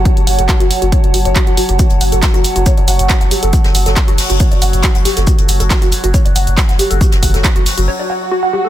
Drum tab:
HH |xxoxxxoxxxoxxxox|xxoxxxoxxxoxxxox|xxoxxxoxxxoxxxox|xxoxxxoxxxoxxxox|
SH |----------------|x-xxxxxxx-xxxxxx|x-xxxxxxxxxxxxxx|x-xxxxxxx-xxxxxx|
CP |----x-------x---|----x-------x---|----x-------x---|----x-------x---|
SD |----------------|----o-------oo--|-o-oo-o-----o-oo|----o-------oo--|
BD |o---o---o---o---|o---o---o---o---|o---o---o---o---|o---o---o---o---|

HH |xxoxxxox--------|
SH |xxxxxxxx--------|
CP |----x-----------|
SD |-o-oo-o---------|
BD |o-o-o-----------|